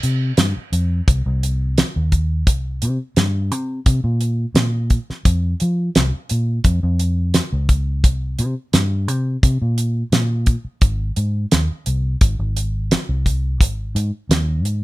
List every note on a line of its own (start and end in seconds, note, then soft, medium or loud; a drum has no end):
0.03 0.31 C3 medium
0.03 closed hi-hat medium
0.37 0.52 G2 medium
0.37 snare loud
0.37 closed hi-hat medium
0.57 muted fingered electric bass stroke soft
0.72 1.00 F2 medium
0.72 closed hi-hat medium
1.08 1.22 C2 medium
1.08 kick loud
1.08 closed hi-hat medium
1.26 1.81 C2 medium
1.43 closed hi-hat medium
1.78 snare loud
1.78 closed hi-hat medium
1.96 2.47 D#2 medium
2.12 kick medium
2.12 closed hi-hat medium
2.47 2.84 C2 medium
2.47 kick loud
2.47 closed hi-hat medium
2.82 2.97 C3 medium
2.82 closed hi-hat medium
3.16 3.51 G2 medium
3.16 snare loud
3.16 closed hi-hat medium
3.51 3.79 C3 medium
3.51 closed hi-hat medium
3.86 4.01 C3 medium
3.86 kick medium
3.86 closed hi-hat medium
4.04 4.45 A#2 medium
4.21 closed hi-hat medium
4.54 4.97 A#2 medium
4.54 snare loud
4.54 closed hi-hat medium
4.90 kick medium
4.90 closed hi-hat soft
5.10 muted fingered electric bass stroke soft
5.10 snare soft
5.25 5.53 F2 medium
5.25 kick loud
5.25 closed hi-hat medium
5.60 5.89 F3 medium
5.60 closed hi-hat medium
5.95 6.10 C2 medium
5.95 snare loud
5.95 closed hi-hat medium
6.29 6.58 A#2 medium
6.29 closed hi-hat medium
6.64 6.79 F2 loud
6.64 kick loud
6.64 closed hi-hat medium
6.83 7.38 F2 medium
6.99 closed hi-hat medium
7.34 snare loud
7.34 closed hi-hat medium
7.53 8.04 C#2 medium
7.69 kick medium
7.69 closed hi-hat medium
8.04 8.40 C2 medium
8.04 kick medium
8.04 closed hi-hat medium
8.39 8.54 C3 medium
8.39 closed hi-hat medium
8.73 9.08 G2 medium
8.73 snare medium
8.73 closed hi-hat medium
9.08 9.36 C3 medium
9.08 closed hi-hat medium
9.43 9.58 C3 medium
9.43 kick loud
9.43 closed hi-hat medium
9.62 10.02 A#2 medium
9.78 closed hi-hat medium
10.12 10.55 A#2 medium
10.12 snare loud
10.12 closed hi-hat medium
10.46 kick medium
10.46 closed hi-hat medium
10.65 muted fingered electric bass stroke soft
10.81 11.10 G#1 medium
10.81 kick medium
10.81 closed hi-hat medium
11.16 11.45 G#2 medium
11.16 closed hi-hat medium
11.52 11.67 D#2 medium
11.52 snare loud
11.52 closed hi-hat medium
11.86 12.15 C2 medium
11.86 closed hi-hat medium
12.21 12.36 G#1 medium
12.21 kick loud
12.21 closed hi-hat medium
12.39 12.95 G#1 medium
12.57 closed hi-hat medium
12.91 snare loud
12.91 closed hi-hat medium
13.09 13.61 C2 medium
13.26 kick medium
13.26 closed hi-hat medium
13.61 13.97 G#1 medium
13.61 kick medium
13.61 closed hi-hat medium
13.95 14.10 G#2 medium
13.95 closed hi-hat medium
14.29 14.64 D#2 medium
14.29 snare medium
14.29 closed hi-hat medium
14.64 14.84 G#2 medium
14.64 closed hi-hat medium